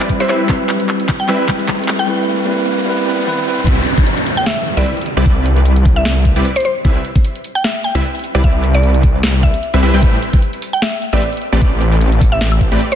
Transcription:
Already playing: G3 C4 E4 B4, riser
0.00 G3 C4 E4 B4 D5, clap, closed hi-hat
0.09 kick, closed hi-hat
0.20 G3 C4 E4 B4 C5 E5, closed hi-hat
0.25 closed hi-hat
0.29 G3 C4 E4 B4 C5 E5, clap, closed hi-hat
0.47 G3 C4 E4 B4 E5, kick, clap, closed hi-hat
0.69 clap, closed hi-hat
0.80 closed hi-hat
0.89 clap, closed hi-hat
1.00 closed hi-hat
1.09 kick, clap, closed hi-hat
1.20 G5
1.27 G3 C4 E4 B4 E5, clap, closed hi-hat
1.48 kick, clap, closed hi-hat
1.59 closed hi-hat
1.68 kick, clap, closed hi-hat
1.79 closed hi-hat
1.84 closed hi-hat
1.88 clap, closed hi-hat
1.99 G5
2.06 G3 C4 E4
2.10 B4
2.46 G3 C4 E4
2.50 B4
2.85 G3 C4 E4
2.89 B4
3.05 G3 C4 E4
3.09 B4
3.25 G3 C4 E4 B4, high tom
3.38 high tom
3.45 G3 C4 E4 B4
3.58 mid tom
3.67 C2 G3 C4 E4 B4 E5, kick, closed hi-hat, crash, downlifter
3.87 closed hi-hat
3.98 kick, closed hi-hat
4.07 closed hi-hat
4.17 closed hi-hat
4.27 closed hi-hat
4.37 G5
4.46 E5, snare, closed hi-hat
4.66 closed hi-hat
4.77 C2 G3 C4 E4 B4 D5 E5, closed hi-hat
4.86 closed hi-hat
4.97 closed hi-hat
5.01 closed hi-hat
5.06 closed hi-hat
5.17 C2 G3 C4 E4 B4 D5
5.26 C2 C4 E4 B4 D5, kick, closed hi-hat
5.46 closed hi-hat
5.57 closed hi-hat
5.66 closed hi-hat
5.76 closed hi-hat
5.85 kick, closed hi-hat
5.96 E5
6.05 snare, closed hi-hat
6.25 kick, closed hi-hat
6.36 C2 G3 C4 E4 B4 D5, closed hi-hat
6.45 closed hi-hat
6.56 C5, closed hi-hat
6.60 closed hi-hat
6.65 C5, closed hi-hat
6.85 C2 G3 C4 E4 B4 E5, kick, closed hi-hat
7.05 closed hi-hat
7.16 kick, closed hi-hat
7.25 closed hi-hat
7.35 closed hi-hat
7.44 closed hi-hat
7.55 G5
7.64 E5, snare, closed hi-hat
7.84 G5, closed hi-hat
7.95 C2 G3 C4 E4 B4 E5, closed hi-hat
8.04 closed hi-hat
8.15 closed hi-hat
8.19 closed hi-hat
8.24 closed hi-hat
8.35 C2 G3 C4 E4 B4 D5
8.44 C2 G3 C4 E4 B4 D5 E5, kick, closed hi-hat
8.64 closed hi-hat
8.74 D5, closed hi-hat
8.83 closed hi-hat
8.94 closed hi-hat
9.03 kick, closed hi-hat
9.23 snare, closed hi-hat
9.43 E5, kick, closed hi-hat
9.54 closed hi-hat
9.63 closed hi-hat
9.74 C2 G3 C4 E4 B4 E5, closed hi-hat
9.78 closed hi-hat
9.83 C2 G3 C4 E4 B4 E5, closed hi-hat
9.93 C2 G3 C4 E4 B4 G5
10.03 A1 A3 C4 G4 B4 E5, kick, closed hi-hat
10.22 closed hi-hat
10.33 kick, closed hi-hat
10.42 closed hi-hat
10.53 closed hi-hat
10.62 open hi-hat
10.73 G5
10.82 E5, snare, closed hi-hat
11.02 closed hi-hat
11.13 A1 A3 C4 G4 B4 D5 E5, closed hi-hat
11.22 closed hi-hat
11.33 closed hi-hat
11.37 closed hi-hat
11.42 closed hi-hat
11.53 A1 A3 C4 G4 B4 D5
11.62 A1 A3 C4 G4 B4 D5, kick, closed hi-hat
11.81 closed hi-hat
11.92 closed hi-hat
12.01 closed hi-hat
12.12 closed hi-hat
12.21 kick, open hi-hat
12.32 E5
12.41 snare, closed hi-hat
12.52 high woodblock
12.61 kick, closed hi-hat
12.72 A1 A3 C4 G4 B4 D5, closed hi-hat
12.81 closed hi-hat
12.92 C5, closed hi-hat

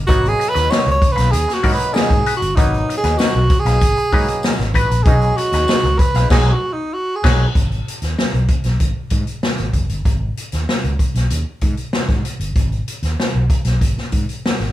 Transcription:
0.07 G#1 F#3 A#3 B3 D#4 F#4 B4 D#5, kick, closed hi-hat
0.25 G#4, closed hi-hat
0.39 muted clean electric guitar stroke, closed hi-hat
0.49 B4
0.54 D#2 D#4 F#4 B4 D#5, snare, closed hi-hat
0.70 D#4 F#4 B4 C#5 D#5, snare, tambourine
0.86 C#2, closed hi-hat
0.91 C#5
1.02 muted clean electric guitar stroke, kick, closed hi-hat
1.12 B4
1.16 B1 D#4 F#4 B4 F5, snare, closed hi-hat
1.31 D#2 G#4, closed hi-hat
1.48 muted clean electric guitar stroke, snare, closed hi-hat
1.53 F#4
1.63 G#2 F#3 A#3 B3 D#4 F#4 B4 D#5, kick, open hi-hat
1.74 B4
1.79 muted clean electric guitar stroke, closed hi-hat
1.93 D#4 F#4 G#4 B4 D#5, snare, tambourine
2.10 G#2, muted clean electric guitar stroke, kick, snare, closed hi-hat
2.26 D#4 F#4 B4 D#5, closed hi-hat
2.37 F#4
2.42 G1, muted clean electric guitar stroke, closed hi-hat
2.55 G#1 F#3 A#3 B3 D#4 F#4 B4 D#5, kick, closed hi-hat
2.74 closed hi-hat
2.89 muted clean electric guitar stroke, closed hi-hat
2.97 G#4
3.04 D#2 D#4 F#4 B4 D#5, snare, closed hi-hat
3.18 D#4 F#4 B4 D#5, snare, tambourine
3.35 B1
3.50 muted clean electric guitar stroke, kick, closed hi-hat
3.59 G#4
3.65 B1 D#4 F#4 B4 F5, snare, closed hi-hat
3.81 G#1, kick, closed hi-hat
3.97 muted clean electric guitar stroke, closed hi-hat
4.12 G#2 F#3 A#3 B3 D#4 F#4 B4 D#5, kick, open hi-hat
4.28 muted clean electric guitar stroke, closed hi-hat
4.43 snare, tambourine
4.59 G#1, muted clean electric guitar stroke, snare, closed hi-hat
4.74 A1 D#4 F#4 B4 D#5, kick, closed hi-hat
4.90 A#1, muted clean electric guitar stroke, closed hi-hat
5.04 B1 F#3 G#3 C#4 D#4 G#4 B4, kick, closed hi-hat
5.08 D#5
5.21 closed hi-hat
5.36 F#4, muted clean electric guitar stroke, closed hi-hat
5.52 D#2 D#4 G#4 B4 D#5, snare, closed hi-hat
5.68 D#4 G#4 B4 D#5, snare, tambourine
5.83 C#2, closed hi-hat
5.99 B4, muted clean electric guitar stroke, kick, closed hi-hat
6.14 B1 D#4 G#4 B4 F5, snare, closed hi-hat
6.30 B1 F#3 G#3 D#4 G#4 B4, kick, snare, crash
6.52 F#4
6.73 D#4
6.93 F#4
7.16 G#4
7.24 B1 F#3 G#3 D#4 G#4 B4 D#5, kick, snare, crash
7.55 G#1, kick, closed hi-hat
7.72 closed hi-hat
7.88 closed hi-hat
8.02 D#2, snare, closed hi-hat
8.19 snare
8.33 B1, closed hi-hat
8.48 kick, closed hi-hat
8.64 B1, snare, closed hi-hat
8.80 G#1, kick, closed hi-hat
9.10 G#2, kick, closed hi-hat
9.27 closed hi-hat
9.43 snare
9.58 G#1, snare, closed hi-hat
9.73 F#1, kick, closed hi-hat
9.89 G1, closed hi-hat
10.05 G#1, kick, closed hi-hat
10.37 closed hi-hat
10.52 D#2, snare, closed hi-hat
10.69 snare
10.84 C#2, closed hi-hat
10.99 kick, closed hi-hat
11.15 B1, snare, closed hi-hat
11.30 D#2, closed hi-hat
11.61 G#2, kick, closed hi-hat
11.77 closed hi-hat
11.93 snare
12.08 G#2, kick, snare, closed hi-hat
12.25 closed hi-hat
12.40 G1, closed hi-hat
12.56 G#1, kick, closed hi-hat
12.72 closed hi-hat
12.88 closed hi-hat
13.03 D#2, snare, closed hi-hat
13.20 snare
13.34 B1
13.50 kick, closed hi-hat
13.65 B1, snare, closed hi-hat
13.81 G#1, kick, closed hi-hat
13.98 snare
14.12 G#2, kick, closed hi-hat
14.29 closed hi-hat
14.46 snare
14.59 G#1, snare, closed hi-hat

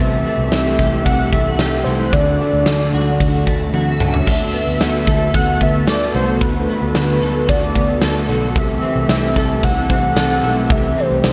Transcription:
Already playing: E3 A3 C4 G4 A4
0.00 C2 C3 E5
0.26 A3
0.38 C2
0.51 C2 E4, snare, ride, tambourine
0.79 C2 G4, kick
1.05 C2 E4 F#5, kick, ride
1.32 C2 A3 E5, kick
1.59 C2 G4, snare, ride, tambourine
1.84 C2 E4 C5
2.13 D2 D3 D4 F#4 D5, kick, ride
2.40 A3
2.53 D2
2.66 D2, snare, ride, tambourine
2.94 D2 F#4
3.20 D2, kick, ride
3.47 D2 A3, kick
3.74 D2 F#4, high tom
4.00 C#2 C#4, mid tom
4.14 floor tom
4.26 D2 D3 A3 B3 F#4 A4, kick, crash
4.30 E5
4.53 B3
4.67 D2
4.81 D2 F#4, snare, ride, tambourine
5.07 D2 A4, kick
5.34 D2 F#4 F#5, kick, ride
5.61 D2 B3 E5, kick
5.87 D2 A4 D5, snare, ride, tambourine
6.14 C2 F#4 C5
6.41 D2 D3 B4, kick, ride
6.69 B3
6.82 D2
6.94 D2 F#4, snare, ride, tambourine
7.22 D2 A4
7.48 D2 F#4 D5, kick, ride
7.75 D2 B3, kick
8.01 D2 A4, snare, ride, tambourine
8.29 B1 F#4
8.55 C2 C3 E3 A3 C4 G4 E5, kick, ride
8.82 C4
8.96 C2
9.08 C2 E4, snare, ride, tambourine
9.36 C2 A4, kick
9.63 C2 E4 F#5, kick, ride
9.89 C2 C4, kick
10.16 C2 A4, snare, ride, tambourine
10.43 B1 E4
10.70 C2 C3 E5, kick, ride
10.97 C4 C5
11.10 C2
11.23 C2 E4, snare, ride, tambourine

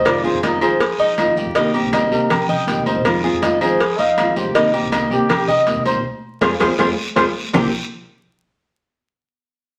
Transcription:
Already playing: C5
0.05 F2 C3 D#3 G#3 C4 F4 D5, cowbell, high conga, low agogo, long guiro, claves
0.23 D#3 G#3 C4 F4 G#4 C5, high conga
0.33 F2
0.42 D#3 G#3 C4 F4 A#4 D#5, cowbell, high conga, low agogo, short guiro
0.61 D#3 F3 G#3 C4 F4 G#4 C5, high conga, low agogo, short guiro, claves
0.80 muted nylon-string guitar stroke, cowbell, high conga, long guiro
0.99 F3 D#4, high conga, low agogo
1.17 D#3 G#3 C4 F4, cowbell, high conga, low timbale, low agogo, short guiro, claves
1.27 F3
1.37 G4, high conga, short guiro
1.46 G2
1.55 C2 C3 D#3 A#3 C4 D#4 G4, cowbell, high conga, low agogo, long guiro
1.74 D#3 A#3 C4 G4, high conga, low agogo
1.83 C2
1.93 D#3 A#3 C4 G4 D#5, cowbell, high conga, low agogo, short guiro, claves
2.11 C3 D#3 A#3 C4 G4 A#4, high conga, short guiro
2.30 G4, muted nylon-string guitar stroke, cowbell, high conga, low conga, low agogo, long guiro, claves
2.48 C3 D#5 G5, high conga, low conga, low agogo
2.67 D#3 A#3 C4 G4, cowbell, high conga, short guiro
2.77 C3
2.86 C5 D#5, high conga, low agogo, short guiro
2.96 C2
3.05 F2 C3 D#3 G#3 C4 F4, cowbell, high conga, low agogo, long guiro, claves
3.24 D#3 G#3 C4 F4 G#4, high conga
3.33 F2
3.42 D#3 G#3 C4 F4 D#5, cowbell, high conga, low agogo, short guiro
3.61 D#3 F3 G#3 C4 F4 G#4 C5, high conga, low agogo, short guiro, claves
3.80 muted nylon-string guitar stroke, cowbell, high conga, long guiro
3.98 F3 D#4 F5, high conga, low agogo
4.17 D#3 G#3 C4 F4, cowbell, high conga, low timbale, low agogo, short guiro, claves
4.27 F3
4.36 G4 C5, high conga, short guiro
4.45 D2
4.55 C2 C3 D#3 A#3 C4 D#4 G4, cowbell, high conga, low agogo, long guiro
4.73 D#3 A#3 C4 G4, high conga, low agogo
4.82 C2
4.92 D#3 A#3 C4 G4 D#5, cowbell, high conga, low agogo, short guiro, claves
5.10 C3 D#3 A#3 C4 G4, high conga, short guiro
5.29 G4, muted nylon-string guitar stroke, cowbell, high conga, low conga, low agogo, long guiro, claves
5.47 C3 D#5, high conga, low conga, low agogo
5.66 D#3 A#3 C4 G4, cowbell, high conga, short guiro
5.76 C3
5.85 C5, high conga, low agogo, short guiro
5.95 C2
6.41 F2 F3 G#3 C4 F4 G#4 C5, cowbell, high conga, high timbale, long guiro, claves
6.60 F2 F3 G#3 C4 F4 G#4 C5, cowbell, high conga, high timbale, long guiro, claves
6.79 F2 F3 G#3 C4 F4 G#4 C5, cowbell, high conga, high timbale, long guiro, claves
7.16 F2 F3 G#3 C4 F4 G#4 C5, cowbell, high conga, high timbale, long guiro, claves
7.53 C2 C3 D#3 A#3 C4 G4 A#4, low bongo, low conga, low timbale, long guiro, claves

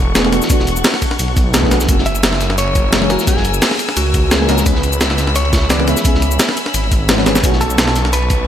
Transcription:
Already playing: E1 E3 A3 B3 D4 F#4 A4 F#5 C#6
0.14 E3 A3 B3 D4 G#4, snare, closed hi-hat, ride, cabasa
0.23 E3 A3 B3 D4 G#4, snare
0.31 E3 A3 B3 D4 F#4, snare, closed hi-hat, ride, cabasa
0.42 snare, cabasa
0.47 E3 A3 B3, kick, closed hi-hat, ride, cabasa
0.51 D4 F#4
0.59 E1, snare
0.67 closed hi-hat, ride, cabasa
0.76 cabasa
0.84 snare, closed hi-hat, open hi-hat, cabasa
0.94 snare
1.02 kick, closed hi-hat, ride, cabasa
1.11 snare
1.19 B1, closed hi-hat, ride, cabasa
1.28 ride
1.37 kick, closed hi-hat, ride, cabasa
1.53 E3 A3 B3 D4 G#4, snare, closed hi-hat, ride, cabasa
1.62 E3 A3 B3 D4 G#4, kick, snare
1.70 B1 E3 A3 B3 D4 F#4, snare, closed hi-hat, ride, cabasa
1.80 snare, cabasa
1.86 F#1 E3 G#3 A#3 A#4 G#5 E6, kick, closed hi-hat, ride, cabasa
1.90 C#4 F#4
1.99 snare
2.06 E5, closed hi-hat, ride, cabasa
2.15 ride, cabasa
2.23 snare, closed hi-hat, ride, cabasa
2.33 snare
2.40 snare, closed hi-hat, ride, cabasa
2.50 snare
2.58 C#5, closed hi-hat, ride, cabasa
2.67 ride
2.75 kick, closed hi-hat, ride, cabasa
2.91 E3 G#3 A#3 C#4 G#4, snare, closed hi-hat, ride, cabasa
3.00 E3 G#3 A#3 C#4 G#4, snare
3.09 E3 G#3 A#3 C#4 F#4 A#4, snare, closed hi-hat, ride, cabasa
3.19 snare, cabasa
3.25 E3 G#3 A#3 G#4, kick, closed hi-hat, ride, cabasa
3.29 C#4 F#4
3.37 F#1, snare
3.45 closed hi-hat, ride, cabasa
3.54 cabasa
3.62 snare, closed hi-hat, open hi-hat, cabasa
3.71 snare
3.79 closed hi-hat, ride, cabasa
3.89 snare
3.97 C#2 F#4, closed hi-hat, ride, cabasa
4.06 ride
4.14 kick, closed hi-hat, ride, cabasa
4.30 E3 G#3 A#3 C#4 G#4, snare, closed hi-hat, ride, cabasa
4.39 E3 G#3 A#3 C#4 G#4, snare
4.47 C#2 E3 G#3 A#3 C#4 F#4 A#4, snare, closed hi-hat, ride, cabasa
4.58 snare, cabasa
4.63 C#2 E3 G#3 B3 C#4 B4 B5, kick, closed hi-hat, ride, cabasa
4.68 C#4 G#4
4.76 snare
4.83 closed hi-hat, ride, cabasa
4.93 ride, cabasa
5.01 snare, closed hi-hat, ride, cabasa
5.09 snare
5.18 snare, closed hi-hat, ride, cabasa
5.27 snare
5.35 C#5, closed hi-hat, ride, cabasa
5.45 ride
5.53 kick, snare, closed hi-hat, ride, cabasa
5.63 snare
5.69 E3 G#3 B3 C#4 B4 D5, snare, closed hi-hat, ride, cabasa
5.78 E3 G#3 B3 C#4 B4, snare
5.86 E3 G#3 B3 C#4 G#4 E5, snare, closed hi-hat, ride, cabasa
5.97 snare, cabasa
6.02 E3 G#3 B3, kick, closed hi-hat, ride, cabasa
6.06 C#4 G#4
6.14 C#2, snare
6.22 closed hi-hat, ride, cabasa
6.31 cabasa
6.39 snare, closed hi-hat, open hi-hat, cabasa
6.49 snare
6.57 closed hi-hat, ride, cabasa
6.66 snare
6.74 G#1, closed hi-hat, ride, cabasa
6.84 ride
6.92 kick, closed hi-hat, ride, cabasa
7.07 E3 G#3 B3 C#4 B4, snare, closed hi-hat, ride, cabasa
7.17 E3 G#3 B3 C#4 B4, snare
7.25 G#1 E3 G#3 B3 C#4 G#4, snare, closed hi-hat, ride, cabasa
7.35 snare, ride, cabasa
7.41 B1 D3 A3 B3 A5 C#6, kick, closed hi-hat, ride, cabasa
7.45 C#4 F#4
7.53 snare
7.61 A4, closed hi-hat, ride, cabasa
7.70 ride, cabasa
7.78 snare, closed hi-hat, ride, cabasa
7.87 snare
7.96 snare, closed hi-hat, ride, cabasa
8.05 snare
8.13 B4, closed hi-hat, ride, cabasa
8.22 ride
8.30 kick, closed hi-hat, ride, cabasa

